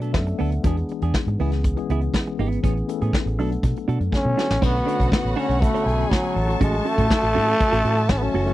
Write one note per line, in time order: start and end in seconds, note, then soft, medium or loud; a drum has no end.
0.00 0.16 B2 loud
0.00 0.12 F#3 medium
0.00 0.13 A3 medium
0.00 0.13 B3 medium
0.00 0.13 D4 medium
0.00 0.14 A4 medium
0.00 0.13 A4 medium
0.00 0.66 B4 medium
0.00 0.66 D5 medium
0.00 closed hi-hat soft
0.12 0.32 F#2 medium
0.12 0.63 F#3 medium
0.12 0.63 A3 medium
0.12 0.62 B3 medium
0.12 0.63 D4 medium
0.12 0.64 A4 medium
0.12 0.37 E5 medium
0.12 muted clean electric guitar stroke soft
0.12 kick medium
0.12 snare medium
0.26 muted clean electric guitar stroke medium
0.26 closed hi-hat soft
0.38 0.57 D2 medium
0.38 0.53 B3 medium
0.38 0.52 D4 medium
0.38 0.52 A4 loud
0.38 0.62 F#5 medium
0.38 open hi-hat soft
0.52 muted clean electric guitar stroke soft
0.52 closed hi-hat soft
0.62 0.82 E2 loud
0.62 1.24 E3 medium
0.62 1.25 G#3 medium
0.62 1.25 B3 medium
0.62 0.79 B3 medium
0.62 1.25 D4 medium
0.62 0.78 D4 medium
0.62 0.70 F#4 medium
0.62 kick loud
0.62 closed hi-hat medium
0.67 0.78 G#4 medium
0.67 1.28 G#4 loud
0.77 muted clean electric guitar stroke medium
0.77 closed hi-hat soft
0.89 muted clean electric guitar stroke soft
0.89 closed hi-hat medium
1.02 1.11 E2 loud
1.02 1.14 B3 soft
1.02 1.14 D4 soft
1.02 1.13 G#4 medium
1.02 closed hi-hat soft
1.14 kick loud
1.14 snare loud
1.26 1.35 G#2 medium
1.26 muted clean electric guitar stroke soft
1.26 closed hi-hat soft
1.38 1.74 C#2 medium
1.38 1.69 E3 medium
1.38 1.69 G#3 medium
1.38 1.70 B3 medium
1.38 1.53 B3 medium
1.38 1.70 C#4 medium
1.38 1.52 E4 medium
1.38 1.70 G#4 medium
1.38 1.52 G#4 medium
1.38 open hi-hat medium
1.52 muted clean electric guitar stroke medium
1.52 snare soft
1.52 closed hi-hat soft
1.64 kick loud
1.64 closed hi-hat medium
1.76 2.07 E3 medium
1.76 2.07 G#3 medium
1.76 2.07 B3 medium
1.76 2.07 C#4 medium
1.76 2.07 G#4 loud
1.76 muted clean electric guitar stroke soft
1.76 closed hi-hat medium
1.90 2.07 C#2 medium
1.90 2.03 B3 medium
1.90 2.03 E4 medium
1.90 2.01 G#4 medium
1.90 closed hi-hat medium
2.01 muted clean electric guitar stroke soft
2.01 closed hi-hat soft
2.14 2.54 E3 medium
2.14 2.55 G#3 medium
2.14 2.55 B3 medium
2.14 2.55 C#4 medium
2.14 2.55 G#4 medium
2.14 muted clean electric guitar stroke soft
2.14 kick medium
2.14 snare medium
2.26 muted clean electric guitar stroke soft
2.26 closed hi-hat soft
2.39 2.56 G#1 medium
2.39 2.59 B3 medium
2.39 2.51 E4 medium
2.39 2.50 G#4 medium
2.39 open hi-hat soft
2.51 muted clean electric guitar stroke soft
2.51 closed hi-hat soft
2.63 2.81 A1 loud
2.63 2.84 E3 medium
2.63 2.84 A3 medium
2.63 2.77 B3 medium
2.63 2.84 B3 medium
2.63 2.76 C#4 medium
2.63 2.84 C#4 medium
2.63 2.75 G#4 medium
2.63 2.84 G#4 medium
2.63 kick loud
2.63 closed hi-hat medium
2.76 muted clean electric guitar stroke soft
2.76 closed hi-hat soft
2.88 3.38 E3 medium
2.88 3.37 A3 medium
2.88 3.37 B3 medium
2.88 3.38 C#4 medium
2.88 3.37 A4 medium
2.88 muted clean electric guitar stroke soft
2.88 closed hi-hat medium
3.01 3.10 A2 loud
3.01 3.13 B3 soft
3.01 3.12 C#4 soft
3.01 3.12 G#4 medium
3.01 closed hi-hat soft
3.13 kick loud
3.13 snare medium
3.26 3.38 A1 medium
3.26 muted clean electric guitar stroke soft
3.26 closed hi-hat soft
3.38 3.55 B1 medium
3.38 3.99 F#3 medium
3.38 3.99 A3 medium
3.38 3.99 B3 medium
3.38 3.99 D4 medium
3.38 3.53 D4 medium
3.38 3.52 F#4 medium
3.38 3.99 A4 medium
3.38 3.51 A4 medium
3.38 open hi-hat medium
3.52 muted clean electric guitar stroke soft
3.52 closed hi-hat soft
3.63 3.72 B2 loud
3.63 muted clean electric guitar stroke soft
3.63 kick loud
3.63 closed hi-hat medium
3.76 muted clean electric guitar stroke soft
3.76 closed hi-hat medium
3.88 3.97 B2 loud
3.88 4.02 D4 medium
3.88 4.00 F#4 medium
3.88 4.00 A4 medium
3.88 closed hi-hat medium
4.00 4.09 F#2 medium
4.00 muted clean electric guitar stroke soft
4.00 closed hi-hat soft
4.12 4.60 D3 medium
4.12 4.62 F#3 medium
4.12 4.60 A3 medium
4.12 4.60 B3 medium
4.12 4.65 C#4 medium
4.12 4.62 A4 medium
4.12 4.58 G#5 medium
4.12 muted clean electric guitar stroke soft
4.12 kick loud
4.12 snare medium
4.25 4.34 B2 medium
4.25 muted clean electric guitar stroke soft
4.37 4.51 D4 medium
4.37 4.49 F#4 medium
4.37 4.49 A4 medium
4.37 snare medium
4.50 4.59 A1 medium
4.50 muted clean electric guitar stroke soft
4.50 snare medium
4.61 4.80 B1 loud
4.61 4.82 D3 medium
4.61 4.82 A3 medium
4.61 6.35 A3 medium
4.61 4.82 B3 medium
4.61 5.12 B3 loud
4.61 4.83 C#4 medium
4.61 4.76 D4 medium
4.61 5.83 F#4 medium
4.61 4.82 F#4 medium
4.61 4.76 A4 medium
4.61 4.76 C#5 medium
4.61 6.35 C#5 medium
4.61 5.83 F#5 medium
4.61 6.35 B5 medium
4.61 8.54 C#6 medium
4.61 kick loud
4.61 crash medium
4.75 closed hi-hat soft
4.86 5.47 D3 medium
4.86 5.48 A3 medium
4.86 5.48 B3 medium
4.86 5.48 C#4 medium
4.86 4.97 D4 medium
4.86 5.48 F#4 medium
4.86 4.98 A4 medium
4.86 4.98 C#5 medium
4.86 closed hi-hat medium
4.99 5.08 B1 loud
4.99 5.10 D4 soft
4.99 5.10 A4 medium
4.99 5.10 C#5 medium
4.99 kick medium
4.99 closed hi-hat medium
5.12 5.37 B3 medium
5.12 kick loud
5.12 snare loud
5.23 5.33 A1 medium
5.23 muted clean electric guitar stroke soft
5.23 closed hi-hat soft
5.36 5.62 C#4 medium
5.36 5.48 D4 medium
5.36 5.48 A4 loud
5.36 5.47 C#5 loud
5.36 open hi-hat medium
5.48 5.66 B1 medium
5.48 5.60 D4 soft
5.48 5.60 A4 medium
5.48 5.60 C#5 medium
5.48 closed hi-hat soft
5.60 5.91 D3 medium
5.60 5.91 A3 medium
5.60 6.13 A3 medium
5.60 5.91 B3 medium
5.60 5.92 C#4 medium
5.60 5.92 F#4 medium
5.60 kick loud
5.60 closed hi-hat medium
5.74 5.85 D4 medium
5.74 5.86 A4 medium
5.74 5.86 C#5 medium
5.74 closed hi-hat medium
5.84 6.03 B1 medium
5.84 6.34 G#4 medium
5.84 6.34 G#5 medium
5.84 closed hi-hat medium
5.97 6.28 D3 medium
5.97 6.29 A3 medium
5.97 6.29 B3 medium
5.97 6.29 C#4 medium
5.97 6.29 F#4 medium
5.97 muted clean electric guitar stroke soft
5.97 closed hi-hat soft
6.11 6.61 F#3 medium
6.11 muted clean electric guitar stroke soft
6.11 kick loud
6.11 snare medium
6.24 muted clean electric guitar stroke medium
6.24 closed hi-hat medium
6.35 6.53 A1 loud
6.35 7.17 E3 medium
6.35 7.17 F#3 medium
6.35 7.17 A3 medium
6.35 7.17 C#4 medium
6.35 8.54 F#4 medium
6.35 7.18 F#4 medium
6.35 8.54 A4 medium
6.35 8.54 E5 medium
6.35 8.54 A5 loud
6.35 8.54 A5 medium
6.35 open hi-hat soft
6.48 muted clean electric guitar stroke medium
6.48 closed hi-hat medium
6.61 6.78 A1 loud
6.61 6.89 G#3 medium
6.61 6.75 C#4 medium
6.61 6.75 F#4 loud
6.61 6.75 A4 medium
6.61 kick loud
6.61 closed hi-hat medium
6.73 closed hi-hat soft
6.85 8.12 A3 loud
6.85 6.96 C#4 medium
6.85 6.96 F#4 medium
6.85 6.97 A4 medium
6.85 closed hi-hat medium
6.98 7.07 A2 loud
6.98 7.08 C#4 soft
6.98 7.09 F#4 medium
6.98 7.09 A4 medium
6.98 kick medium
6.98 closed hi-hat soft
7.10 kick loud
7.10 snare loud
7.23 7.37 A1 loud
7.23 muted clean electric guitar stroke soft
7.23 closed hi-hat soft
7.35 7.53 A2 medium
7.35 7.47 C#4 medium
7.35 7.47 F#4 medium
7.35 7.46 A4 medium
7.35 open hi-hat medium
7.48 7.58 C#4 medium
7.48 7.59 F#4 medium
7.48 closed hi-hat soft
7.59 muted clean electric guitar stroke soft
7.59 kick loud
7.59 closed hi-hat medium
7.72 7.81 A1 medium
7.72 7.83 C#4 medium
7.72 7.83 F#4 medium
7.72 7.84 A4 medium
7.72 closed hi-hat medium
7.84 8.11 A2 loud
7.84 7.95 C#4 medium
7.84 7.96 F#4 medium
7.84 7.95 A4 medium
7.84 closed hi-hat medium
7.96 muted clean electric guitar stroke medium
7.96 closed hi-hat soft
8.09 8.27 A1 medium
8.09 8.19 C#4 medium
8.09 muted clean electric guitar stroke soft
8.09 kick loud
8.09 snare loud
8.18 8.42 E3 medium
8.18 8.42 F#3 medium
8.18 8.24 B3 medium
8.18 muted clean electric guitar stroke soft
8.18 closed hi-hat soft
8.22 8.42 A3 medium
8.22 8.42 C#4 medium
8.22 8.54 C#4 medium
8.22 8.43 F#4 medium
8.34 8.51 F#1 medium
8.34 8.46 C#4 medium
8.34 8.46 F#4 medium
8.34 8.45 A4 medium
8.34 open hi-hat soft
8.46 8.54 E3 medium
8.46 8.54 F#3 medium
8.46 8.54 A3 medium
8.46 8.54 C#4 medium
8.46 8.54 F#4 medium
8.46 8.54 F#4 loud
8.46 8.54 A4 medium
8.46 closed hi-hat medium